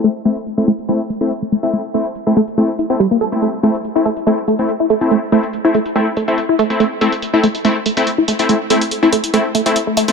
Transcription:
<<
  \new Staff \with { instrumentName = "Supersaw synth" } { \time 4/4 \key a \minor \tempo 4 = 142 <a c' e'>16 r16 <a c' e'>16 r8 <a c' e'>16 r8 <a c' e'>16 r8 <a c' e'>16 r8. <a c' e'>16~ | <a c' e'>16 r16 <a c' e'>16 r8 <a c' e'>16 r8 <a c' e'>16 r8 <a c' e'>16 r8. <a c' e'>16~ | <a c' e'>16 r16 <a c' e'>16 r8 <a c' e'>16 r8 <a c' e'>16 r8 <a c' e'>16 r8. <a c' e'>16~ | <a c' e'>16 r16 <a c' e'>16 r8 <a c' e'>16 r8 <a c' e'>16 r8 <a c' e'>16 r8. <a c' e'>16~ |
<a c' e'>16 r16 <a c' e'>16 r8 <a c' e'>16 r8 <a c' e'>16 r8 <a c' e'>16 r8. <a c' e'>16~ | <a c' e'>16 r16 <a c' e'>16 r8 <a c' e'>16 r8 <a c' e'>16 r8 <a c' e'>16 r8. <a c' e'>16 | }
  \new Staff \with { instrumentName = "Synth arpeggio sound" } { \time 4/4 \key a \minor a16 r16 a16 r8 a16 a16 r16 a16 r16 a16 r8 a16 a16 r16 | a16 r16 a16 r8 a16 a16 r16 a16 r16 e'16 c'16 g16 bes16 a'16 r16 | a16 r16 a16 r8 e'16 a16 r16 a16 r16 a16 r8 e'16 a16 r16 | a16 r16 a16 r8 e'16 a16 r16 a16 r16 a16 r8 e'16 a16 r16 |
a16 r16 a16 r8 e'16 a16 r16 a16 r16 a16 r8 e'16 a16 r16 | a16 r16 a16 r8 e'16 a16 r16 a16 r16 a16 r8 a16 a16 r16 | }
  \new DrumStaff \with { instrumentName = "Drums" } \drummode { \time 4/4 hh8 hh16 hh16 hh8 hh16 hh16 hh8 hh16 hh16 hh8 hh16 hh16 | hh8 hh16 hh16 hh8 hh16 hh16 hh8 hh16 hh16 hh8 hh16 hh16 | hh8 hh16 hh16 hh8 hh16 hh16 hh8 hh16 hh16 hh8 hh16 hh16 | hh8 hh16 hh16 hh8 hh16 hh16 hh8 hh16 hh16 hh8 hh16 hh16 |
hh8 hh16 hh16 hh8 hh16 hh16 hh8 hh16 hh16 hh8 hh16 hh16 | hh8 hh16 hh16 hh8 hh16 hh16 hh8 hh16 hh16 hh8 hh16 hh16 | }
>>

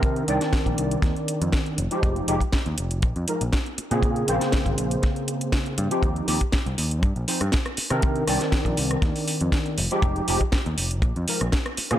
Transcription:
<<
  \new Staff \with { instrumentName = "Tine electric piano" } { \time 4/4 \key f \dorian \tempo 4 = 120 <ees c' d' bes'>8 <ees c' d' d''>2. r16 <f aes ees' g'>16~ | <f aes ees' g'>8 <f aes ees' g'>16 r4. r16 <f aes ees' bes'>16 r4 <des bes c' aes'>16~ | <des bes c' aes'>8 <des bes c' c''>2.~ <des bes c' c''>16 <f c' ees' g'>16~ | <f c' ees' g'>8 <f c' ees' g'>16 r4. r16 <f c' ees' c''>16 r4 <ees c' d' bes'>16~ |
<ees c' d' bes'>8 <ees c' d' d''>2. r16 <f aes ees' g'>16~ | <f aes ees' g'>8 <f aes ees' g'>16 r4. r16 <f aes ees' bes'>16 r4 <des bes c' aes'>16 | }
  \new Staff \with { instrumentName = "Picked electric bass" } { \clef bass \time 4/4 \key f \dorian c16 r16 c,16 r8 bes,,16 c,16 r16 ees,16 r8 f,16 r8 f,,16 r16 | f,,16 r16 f,,16 r8 ees,16 f,,8 bes,,16 f,16 r16 bes,,16 r8. bes,16~ | bes,16 r16 bes,,16 r8 aes,,16 bes,,16 r4. r16 g,16 r16 | ees,16 r16 ees,16 r8 c,16 ees,8 g,16 bes,,16 r16 g,16 r8. c16~ |
c16 r16 c,16 r8 bes,,16 c,16 r16 ees,16 r8 f,16 r8 f,,16 r16 | f,,16 r16 f,,16 r8 ees,16 f,,8 bes,,16 f,16 r16 bes,,16 r8. bes,16 | }
  \new DrumStaff \with { instrumentName = "Drums" } \drummode { \time 4/4 <hh bd>16 hh16 hh16 <hh sn>16 <hh bd sn>16 <hh bd>16 hh16 hh16 <hh bd sn>16 hh16 hh16 hh16 <hh bd sn>16 hh16 hh16 hh16 | <hh bd>16 hh16 hh16 <hh bd>16 <hh bd sn>16 hh16 hh16 hh16 <hh bd>16 hh16 hh16 hh16 <hh bd sn>16 hh16 hh16 hh16 | <hh bd>16 hh16 hh16 <hh sn>16 <hh bd sn>16 <hh bd>16 hh16 hh16 <hh bd sn>16 hh16 hh16 hh16 <hh bd sn>16 hh16 hh16 hh16 | <hh bd>16 hh16 hho16 <hh bd>16 <hh bd sn>16 hh16 hho16 hh16 <hh bd>16 hh16 hho16 <hh ss>16 <hh bd sn>16 <hh ss>16 hho16 <hh ss>16 |
<hh bd>16 hh16 <hho ss>16 <hh sn>16 <hh bd sn>16 <hh bd>16 hho16 <hh ss>16 <hh bd sn>16 hho16 hho16 hh16 <hh bd sn>16 hh16 hho16 hh16 | <hh bd>16 hh16 hho16 bd16 <hh bd sn>16 hh16 hho16 hh16 <hh bd>16 hh16 hho16 <hh ss>16 <hh bd sn>16 <hh ss>16 hho16 <hh ss>16 | }
>>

